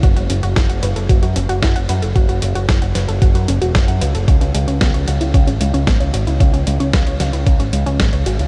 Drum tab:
HH |xxxxxxxxxxxxxxxx|xxxxxxxxxxxxxxxx|xxxxxxxxxxxxxxxx|xxxxxxxxxxxxxxxx|
SD |----o-------o---|----o-o-----o---|----o-------o---|----o-o-----o---|
BD |o---o---o---o---|o---o---o---o---|o---o---o---o---|o---o---o---o---|